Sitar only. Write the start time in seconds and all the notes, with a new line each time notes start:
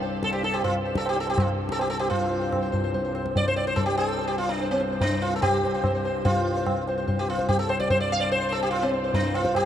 0.03 C5
0.24 A4
0.33 G4
0.44 A4
0.54 G4
0.64 F4
0.85 C5
0.97 A4
1.09 G4
1.20 A4
1.30 G4
1.40 F4
1.72 A4
1.81 G4
1.90 A4
1.99 G4
2.10 F4 C5
2.20 C5
2.31 C5
2.41 C5
2.62 C5
2.72 C5
2.84 C5
2.94 C5
3.05 C5
3.15 C5
3.37 D5
3.48 C5
3.56 D5
3.67 C5
3.76 A4
3.86 G4
3.97 A4
4.09 C5
4.18 C5
4.28 G4
4.38 F4
4.49 D4
4.62 C5
4.71 C4
4.80 C5
4.92 C5
5.01 D4
5.12 C5
5.22 F4
5.36 A4
5.42 G4
5.53 C5
5.64 C5
5.74 C5
5.85 C5
5.95 C5
6.05 C5
6.25 F4
6.36 C5
6.56 C5
6.88 C5
6.98 C5
7.08 C5
7.19 G4
7.30 F4
7.38 C5
7.49 G4
7.59 A4
7.69 C5
7.80 D5
7.90 C5
8.00 D5
8.12 F5
8.20 D5
8.32 C5
8.49 A4 C5
8.63 G4
8.71 F4
8.82 C4
8.93 C5
9.04 C5
9.14 D4
9.24 C5
9.35 F4
9.44 C5
9.56 G4